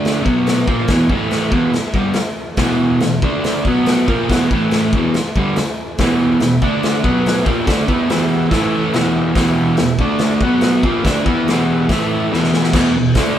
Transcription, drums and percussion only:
0.05 snare medium
0.05 open hi-hat soft
0.26 kick medium
0.47 snare loud
0.47 open hi-hat medium
0.68 kick loud
0.88 kick loud
0.88 snare loud
0.88 open hi-hat medium
1.09 kick medium
1.31 snare medium
1.31 open hi-hat soft
1.52 kick loud
1.73 snare medium
1.73 open hi-hat soft
1.94 kick medium
2.14 snare loud
2.14 open hi-hat medium
2.57 kick loud
2.57 snare loud
2.57 open hi-hat medium
3.00 snare loud
3.00 open hi-hat soft
3.22 kick loud
3.44 snare medium
3.44 open hi-hat soft
3.65 kick medium
3.86 snare loud
3.86 open hi-hat medium
4.08 kick loud
4.30 kick medium
4.30 snare loud
4.30 open hi-hat medium
4.51 kick loud
4.71 snare loud
4.71 open hi-hat medium
4.93 kick loud
5.14 snare medium
5.14 open hi-hat soft
5.36 kick medium
5.56 snare loud
5.56 open hi-hat medium
5.98 kick loud
5.98 snare loud
5.98 open hi-hat medium
6.40 snare medium
6.40 open hi-hat soft
6.62 kick medium
6.83 snare loud
6.83 open hi-hat soft
7.04 kick loud
7.26 snare loud
7.26 open hi-hat medium
7.46 kick loud
7.67 kick loud
7.67 snare loud
7.67 open hi-hat medium
7.88 kick loud
8.10 snare loud
8.10 open hi-hat medium
8.51 kick loud
8.51 snare loud
8.51 open hi-hat soft
8.94 snare loud
8.94 open hi-hat medium
9.35 kick loud
9.35 snare loud
9.35 open hi-hat medium
9.77 snare loud
9.77 open hi-hat soft
9.99 kick loud
10.19 snare loud
10.19 open hi-hat soft
10.41 kick medium
10.61 snare loud
10.61 open hi-hat medium
10.83 kick loud
11.05 kick loud
11.05 snare loud
11.05 open hi-hat medium
11.26 kick loud
11.48 snare loud
11.48 open hi-hat medium
11.89 kick medium
11.89 snare loud
11.89 open hi-hat medium
12.33 snare medium
12.44 snare medium
12.54 snare medium
12.63 snare medium
12.73 kick loud
12.73 snare loud
12.73 crash loud
13.15 kick loud
13.15 snare loud
13.15 open hi-hat medium

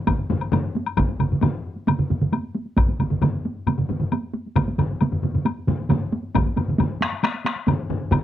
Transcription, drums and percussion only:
0.07 taiko medium
0.07 taiko low-mid medium
0.07 taiko mid loud
0.07 taiko high medium
0.07 high woodblock medium
0.19 taiko high soft
0.30 taiko low-mid loud
0.30 taiko mid medium
0.30 taiko high medium
0.41 taiko high soft
0.41 high woodblock soft
0.52 taiko low-mid loud
0.52 taiko mid medium
0.52 taiko high medium
0.52 high woodblock soft
0.65 taiko high soft
0.75 taiko high medium
0.86 taiko high soft
0.86 high woodblock medium
0.97 taiko loud
0.97 taiko low-mid loud
0.97 taiko mid medium
0.97 taiko high medium
0.97 high woodblock medium
1.09 taiko high soft
1.19 taiko low-mid medium
1.19 taiko mid medium
1.19 taiko high medium
1.19 high woodblock soft
1.31 taiko low-mid medium
1.31 taiko mid medium
1.31 taiko high soft
1.41 taiko low-mid loud
1.41 taiko mid loud
1.41 taiko high medium
1.41 high woodblock soft
1.76 taiko high soft
1.87 taiko low-mid medium
1.87 taiko mid medium
1.87 taiko high medium
1.87 high woodblock soft
1.99 taiko low-mid medium
1.99 taiko mid medium
1.99 taiko high soft
2.10 taiko low-mid medium
2.10 taiko mid medium
2.10 taiko high soft
2.21 taiko low-mid medium
2.21 taiko mid medium
2.21 taiko high soft
2.32 taiko high medium
2.32 high woodblock soft
2.43 taiko high soft
2.55 taiko high soft
2.65 taiko high soft
2.77 taiko loud
2.77 taiko low-mid medium
2.77 taiko mid medium
2.77 taiko high medium
2.77 high woodblock medium
2.88 taiko high soft
2.99 taiko low-mid medium
2.99 taiko mid medium
2.99 taiko high medium
2.99 high woodblock soft
3.10 taiko low-mid medium
3.10 taiko mid medium
3.10 taiko high soft
3.22 taiko low-mid loud
3.22 taiko mid loud
3.22 taiko high medium
3.22 high woodblock soft
3.34 taiko high soft
3.45 taiko high medium
3.56 taiko high soft
3.67 taiko low-mid medium
3.67 taiko mid medium
3.67 taiko high medium
3.67 high woodblock soft
3.78 taiko low-mid medium
3.78 taiko mid medium
3.89 taiko low-mid medium
3.89 taiko mid medium
3.89 taiko high soft
4.00 taiko low-mid medium
4.00 taiko mid medium
4.00 taiko high soft
4.12 taiko high medium
4.12 high woodblock soft
4.23 taiko high soft
4.34 taiko high medium
4.46 taiko high soft
4.56 taiko medium
4.56 taiko low-mid medium
4.56 taiko mid loud
4.56 taiko high medium
4.56 high woodblock medium
4.68 taiko high soft
4.78 taiko low-mid loud
4.78 taiko mid loud
4.78 high woodblock soft
4.91 taiko high soft
5.01 taiko low-mid medium
5.01 taiko mid medium
5.01 taiko high medium
5.01 high woodblock soft
5.12 taiko low-mid medium
5.12 taiko mid medium
5.23 taiko low-mid medium
5.23 taiko mid medium
5.23 taiko high soft
5.34 taiko low-mid medium
5.34 taiko mid medium
5.46 taiko high medium
5.46 high woodblock soft
5.57 taiko high soft
5.67 taiko low-mid loud
5.67 taiko mid loud
5.67 taiko high medium
5.80 taiko high soft
5.89 taiko low-mid loud
5.89 taiko mid loud
5.89 taiko high medium
5.89 high woodblock soft
6.02 taiko high soft
6.13 taiko high medium
6.23 taiko high soft
6.35 taiko loud
6.35 taiko low-mid loud
6.35 taiko mid loud
6.35 taiko high medium
6.35 high woodblock medium
6.46 taiko high medium
6.56 taiko low-mid medium
6.56 taiko mid medium
6.56 taiko high medium
6.56 high woodblock soft
6.68 taiko low-mid medium
6.68 taiko mid medium
6.68 taiko high soft
6.78 taiko low-mid loud
6.78 taiko mid medium
6.78 taiko high medium
6.78 high woodblock soft
6.90 taiko high soft
7.01 taiko rim medium
7.01 taiko high medium
7.12 taiko high soft
7.23 taiko rim medium
7.23 taiko high medium
7.23 high woodblock medium
7.35 taiko high soft
7.45 taiko rim medium
7.45 taiko high medium
7.56 taiko high soft
7.67 taiko low-mid loud
7.67 taiko mid loud
7.67 taiko high medium
7.67 high woodblock soft
7.79 taiko high soft
7.89 taiko low-mid loud
7.89 taiko mid medium
7.89 taiko high soft
8.01 taiko high soft
8.12 taiko loud
8.12 taiko low-mid loud
8.12 taiko mid medium
8.12 taiko high medium
8.12 high woodblock medium

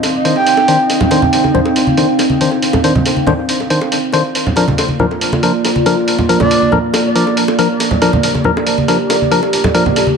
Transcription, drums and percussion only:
0.03 closed hi-hat medium
0.03 high bongo medium
0.25 closed hi-hat soft
0.36 high bongo soft
0.47 closed hi-hat medium
0.57 high bongo medium
0.68 closed hi-hat medium
0.90 closed hi-hat medium
0.90 high bongo medium
1.01 low conga medium
1.11 closed hi-hat soft
1.11 high bongo medium
1.22 high conga medium
1.22 low conga medium
1.33 closed hi-hat medium
1.44 high bongo soft
1.44 high conga medium
1.55 low conga medium
1.66 high bongo medium
1.76 closed hi-hat medium
1.87 high conga medium
1.97 closed hi-hat soft
1.97 high bongo soft
2.19 closed hi-hat medium
2.19 high bongo medium
2.30 high conga medium
2.41 closed hi-hat soft
2.51 high bongo soft
2.62 closed hi-hat medium
2.73 high bongo medium
2.73 low conga medium
2.84 closed hi-hat soft
2.95 high conga medium
2.95 low conga medium
3.06 closed hi-hat medium
3.06 high bongo soft
3.16 high conga medium
3.27 high bongo medium
3.27 low conga medium
3.49 closed hi-hat medium
3.60 high bongo soft
3.70 closed hi-hat soft
3.81 high bongo medium
3.92 closed hi-hat medium
4.13 closed hi-hat soft
4.13 high bongo soft
4.35 closed hi-hat medium
4.46 low conga medium
4.56 closed hi-hat soft
4.56 high bongo soft
4.68 high conga medium
4.68 low conga medium
4.78 closed hi-hat medium
4.78 high bongo medium
4.88 high conga medium
4.99 low conga medium
5.11 high bongo soft
5.21 closed hi-hat medium
5.32 high bongo medium
5.32 high conga medium
5.43 closed hi-hat soft
5.65 closed hi-hat medium
5.65 high bongo soft
5.76 high conga medium
5.86 closed hi-hat soft
5.86 high bongo medium
6.08 closed hi-hat medium
6.18 high bongo soft
6.18 low conga medium
6.29 closed hi-hat soft
6.40 high bongo medium
6.40 high conga medium
6.40 low conga medium
6.51 closed hi-hat medium
6.62 high conga soft
6.72 high bongo soft
6.72 low conga medium
6.94 closed hi-hat medium
6.94 high bongo medium
7.16 closed hi-hat soft
7.27 high bongo medium
7.37 closed hi-hat medium
7.48 high bongo medium
7.59 closed hi-hat medium
7.80 closed hi-hat medium
7.80 high bongo medium
7.91 low conga medium
8.02 closed hi-hat medium
8.02 high bongo medium
8.13 high conga medium
8.13 low conga medium
8.23 closed hi-hat medium
8.34 high bongo soft
8.34 high conga medium
8.44 low conga medium
8.57 high bongo medium
8.67 closed hi-hat medium
8.78 high conga medium
8.88 closed hi-hat medium
8.88 high bongo medium
9.10 closed hi-hat medium
9.10 high bongo medium
9.22 high conga medium
9.32 closed hi-hat medium
9.43 high bongo medium
9.53 closed hi-hat medium
9.64 high bongo medium
9.64 low conga medium
9.75 closed hi-hat medium
9.86 high conga medium
9.86 low conga medium
9.96 closed hi-hat medium
9.96 high bongo medium
10.07 high conga medium

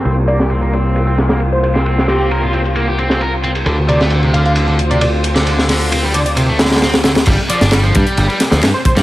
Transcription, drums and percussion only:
0.05 closed hi-hat soft
0.05 ride medium
0.28 closed hi-hat medium
0.28 ride medium
0.40 snare soft
0.40 closed hi-hat soft
0.50 closed hi-hat soft
0.50 ride medium
0.62 ride soft
0.73 closed hi-hat medium
0.73 ride medium
0.85 closed hi-hat soft
0.95 closed hi-hat soft
0.95 ride medium
1.07 ride soft
1.18 snare soft
1.18 closed hi-hat medium
1.18 ride medium
1.29 snare soft
1.29 closed hi-hat soft
1.40 closed hi-hat soft
1.40 ride medium
1.63 closed hi-hat medium
1.63 ride medium
1.75 snare soft
1.75 closed hi-hat soft
1.86 closed hi-hat soft
1.86 ride medium
1.98 snare soft
2.08 snare soft
2.08 closed hi-hat medium
2.08 open hi-hat medium
2.20 closed hi-hat soft
2.31 closed hi-hat soft
2.31 ride medium
2.53 closed hi-hat medium
2.53 ride medium
2.65 closed hi-hat soft
2.76 closed hi-hat soft
2.76 ride medium
2.98 closed hi-hat medium
2.98 ride medium
3.10 snare soft
3.10 closed hi-hat soft
3.21 closed hi-hat soft
3.21 ride medium
3.43 closed hi-hat medium
3.43 ride medium
3.55 closed hi-hat soft
3.55 ride medium
3.66 closed hi-hat soft
3.66 ride medium
3.88 closed hi-hat medium
3.88 ride medium
4.01 snare soft
4.01 closed hi-hat soft
4.10 closed hi-hat soft
4.10 ride medium
4.23 ride soft
4.34 closed hi-hat medium
4.34 ride medium
4.46 closed hi-hat soft
4.55 closed hi-hat soft
4.55 ride medium
4.68 ride soft
4.79 closed hi-hat medium
4.91 closed hi-hat soft
5.01 closed hi-hat soft
5.01 ride medium
5.24 closed hi-hat medium
5.24 ride medium
5.35 snare soft
5.35 closed hi-hat soft
5.47 closed hi-hat soft
5.47 ride medium
5.59 snare soft
5.69 snare soft
5.69 closed hi-hat medium
5.69 open hi-hat medium
5.81 closed hi-hat soft
5.92 closed hi-hat soft
5.92 ride medium
6.14 closed hi-hat medium
6.14 ride medium
6.26 closed hi-hat soft
6.37 closed hi-hat soft
6.37 ride medium
6.59 snare medium
6.59 closed hi-hat medium
6.59 ride medium
6.65 snare medium
6.65 ride medium
6.70 snare medium
6.70 closed hi-hat soft
6.70 ride medium
6.76 snare medium
6.76 ride medium
6.82 snare loud
6.82 closed hi-hat soft
6.82 ride medium
6.93 snare loud
6.93 ride medium
7.03 snare loud
7.03 closed hi-hat medium
7.03 ride medium
7.15 snare loud
7.15 closed hi-hat soft
7.15 ride medium
7.26 kick loud
7.26 closed hi-hat soft
7.26 crash medium
7.26 ride medium
7.50 closed hi-hat medium
7.50 ride medium
7.61 snare soft
7.61 closed hi-hat soft
7.72 snare loud
7.72 clap loud
7.72 closed hi-hat soft
7.72 ride medium
7.84 ride soft
7.95 kick loud
7.95 closed hi-hat medium
7.95 ride medium
8.07 closed hi-hat soft
8.17 closed hi-hat soft
8.17 ride medium
8.30 ride soft
8.40 snare soft
8.40 closed hi-hat medium
8.40 ride medium
8.52 snare medium
8.52 closed hi-hat soft
8.63 snare loud
8.63 clap loud
8.63 closed hi-hat soft
8.63 ride medium
8.85 kick loud
8.85 closed hi-hat medium
8.85 ride medium
8.97 snare soft
8.97 closed hi-hat soft

